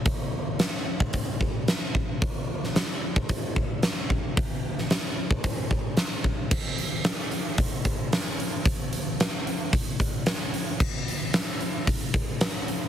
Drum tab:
CC |----------------|----------------|----------------|x---------------|
HH |o---o---o---o---|o---o---o---o---|o---o---o---o---|--o-o-o-o-o-o-o-|
SD |----o-------o---|---oo-------o---|---oo-------o---|----o-------o---|
BD |o------oo-o---o-|o------oo-o---o-|o------oo-o---o-|o-------o-o-----|

CC |----------------|x---------------|
HH |o-o-o-o-o-o-o-o-|--o-o-o-o-o-o-o-|
SD |----o-------o---|----o-------o---|
BD |o-------o-o-----|o-------o-o-----|